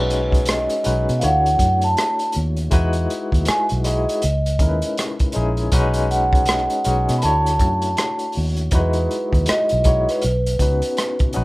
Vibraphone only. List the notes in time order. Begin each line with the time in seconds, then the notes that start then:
Already playing: B4
0.50 D#5
1.19 F5
1.24 F#5
1.84 A5
3.48 G#5
3.86 D#5
6.11 F#5
7.18 B5
7.23 A5
8.75 B4
9.49 D#5
10.09 B4